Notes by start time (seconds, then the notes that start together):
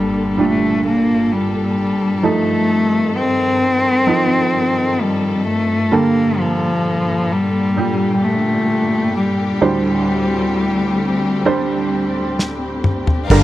Already playing: G2 A#2 D3 G3 A#3 A4, impact
0.38 A#2 G3 A3 D4
0.87 A#3
1.32 G3
2.23 G2 D#3 F3 A3 C4 D#4 A4
3.17 C4
4.07 F3 D#4 F4
5.02 G3
5.48 A3
5.92 G2 A#2 D3 G3 A#3 A4
6.40 F3
7.32 G3
7.77 A#2 G3 G4
8.24 A3
9.16 G3
9.61 D2 A2 G3 C4 D4 C5
11.45 G3 D4 C5
12.39 snare
12.84 mid tom
13.07 floor tom
13.30 G1 G2 D3 G3 D4 G4 A#4 D5 F5 A#5, kick, crash, downlifter